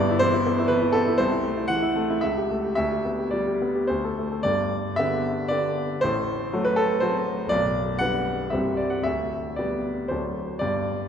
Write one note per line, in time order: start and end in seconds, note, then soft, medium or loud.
0.00 1.15 G1 medium
0.00 1.16 G2 medium
0.00 0.18 B3 medium
0.00 0.10 E4 medium
0.00 0.22 D5 loud
0.10 0.30 E4 medium
0.19 0.41 E3 medium
0.19 0.69 C5 loud
0.34 0.53 E4 medium
0.47 0.66 B3 medium
0.59 0.78 E4 medium
0.68 0.90 E3 medium
0.68 0.94 B4 loud
0.82 1.02 E4 medium
0.93 1.15 B3 medium
0.93 1.19 A4 loud
1.07 1.20 E4 medium
1.18 2.20 C2 medium
1.18 1.69 C5 loud
1.31 1.52 E4 medium
1.45 1.65 A3 medium
1.57 1.78 E4 medium
1.68 1.91 E3 medium
1.68 2.22 F#5 loud
1.82 2.04 E4 medium
1.96 2.18 A3 medium
2.10 2.23 E4 medium
2.21 2.76 C#2 medium
2.21 2.74 E5 medium
2.37 2.59 G4 medium
2.50 2.72 A3 medium
2.64 2.78 G4 medium
2.75 3.86 D2 medium
2.75 3.33 E5 medium
2.92 3.14 G4 soft
3.05 3.28 B3 soft
3.19 3.42 G4 medium
3.31 3.56 G3 medium
3.31 3.87 D5 medium
3.47 3.70 G4 medium
3.62 3.84 B3 medium
3.75 3.89 G4 medium
3.87 4.43 D2 medium
3.87 4.44 C5 medium
4.04 4.26 A4 medium
4.19 4.40 A3 soft
4.32 4.45 A4 soft
4.43 5.99 G1 medium
4.43 5.99 G2 medium
4.43 4.98 D5 loud
4.96 5.47 D3 medium
4.96 5.47 B3 medium
4.96 5.48 G4 medium
4.96 5.50 E5 loud
5.48 5.99 D3 medium
5.48 5.99 B3 medium
5.48 5.99 G4 medium
5.48 6.02 D5 loud
6.01 7.47 A1 medium
6.01 7.47 A2 medium
6.01 6.64 C5 loud
6.53 6.98 F#3 medium
6.53 6.99 A3 medium
6.53 6.99 F#4 medium
6.65 6.77 B4 loud
6.76 7.02 A4 loud
7.00 7.47 F#3 medium
7.00 7.47 A3 medium
7.00 7.48 F#4 medium
7.00 7.50 C5 loud
7.46 8.47 B0 medium
7.46 8.00 D5 loud
7.51 8.50 B1 medium
7.99 8.49 G3 medium
7.99 8.49 D4 medium
7.99 8.49 B4 medium
7.99 8.52 F#5 loud
8.50 9.04 C1 medium
8.50 9.04 C2 medium
8.50 9.02 G3 soft
8.50 9.02 C4 soft
8.50 9.02 G4 soft
8.50 8.78 E5 medium
8.77 8.91 D5 medium
8.90 9.04 F#5 medium
9.03 10.06 D1 medium
9.03 10.08 D2 medium
9.03 9.58 E5 medium
9.56 10.07 G3 soft
9.56 10.07 B3 soft
9.56 10.08 G4 soft
9.56 10.10 D5 medium
10.08 10.61 D1 soft
10.08 10.61 D2 medium
10.08 10.58 F#3 soft
10.08 10.59 D4 soft
10.08 10.59 A4 soft
10.08 10.61 C5 medium
10.59 11.08 G1 medium
10.59 11.08 G2 medium
10.59 11.08 D5 medium